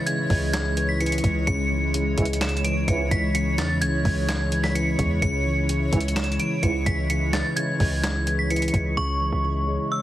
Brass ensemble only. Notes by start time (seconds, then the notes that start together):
2.18 C#2 G#2 E3
2.88 C#2 G#2 E3
5.93 C#2 G#2 E3
6.63 C#2 G#2 E3